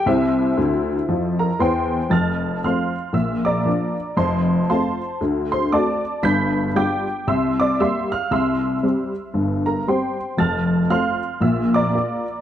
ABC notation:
X:1
M:4/4
L:1/8
Q:"Swing" 1/4=116
K:F
V:1 name="Honky-tonk piano"
[Ece]4- [Ece] [Bb] [cgc']2 | [af'a']2 [fc'f']2 [ee'] [dbd']3 | [cac']2 [cac']2 z [cc'] [dad']2 | [=bg'=b']2 [gd'g']2 [ec'e'] [dd'] [ec'e'] [ff'] |
[ec'e']4- [ec'e'] [Bb] [cgc']2 | [af'a']2 [fc'f']2 [ee'] [dbd']3 |]
V:2 name="Honky-tonk piano" clef=bass
[C,,C,]2 [D,,D,]2 [F,,F,]2 [E,,E,]2 | [F,,,F,,]2 [F,A,C]2 [B,,,B,,]2 [F,B,D]2 | [F,,,F,,]2 [A,CF]2 [D,,D,]2 [A,C^F]2 | [G,,,G,,]2 [G,DF]2 [C,,C,]2 [G,B,G]2 |
[C,,C,]2 [G,CG]2 [G,,,G,,]2 [G,CG]2 | [F,,,F,,]2 [A,CF]2 [B,,,B,,]2 [B,F]2 |]